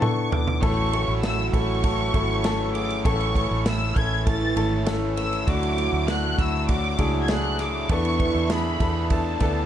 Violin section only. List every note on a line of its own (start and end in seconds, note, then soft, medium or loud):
0.02 0.32 C#6 medium
0.32 0.63 D6 medium
0.63 1.19 C#6 loud
1.24 1.54 E6 loud
1.54 2.71 C#6 loud
2.75 3.05 D6 loud
3.05 3.62 C#6 loud
3.67 3.97 E6 loud
3.96 4.26 G#6 loud
4.27 4.83 A6 loud
5.18 5.46 E6 loud
5.49 6.09 D6 loud
6.10 6.39 F#6 loud
6.40 6.69 E6 loud
6.69 7.19 D6 loud
7.23 7.29 G#6 medium
7.32 7.61 F#6 loud
7.61 7.90 D6 medium
7.91 8.51 C#6 loud
8.51 9.11 B5 medium
9.11 9.66 A5 medium